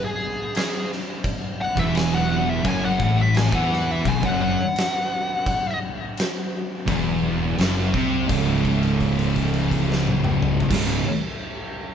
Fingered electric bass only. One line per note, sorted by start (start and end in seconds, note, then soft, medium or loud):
1.77 2.61 E1 loud
2.65 2.97 F#1 medium
3.00 3.49 A1 loud
3.52 4.01 E2 loud
4.05 4.22 B1 medium
4.23 4.56 F#1 medium
6.87 7.54 E1 medium
7.58 7.91 F#1 medium
7.94 8.27 C2 medium
8.29 10.58 C#1 medium
10.70 11.00 C#1 loud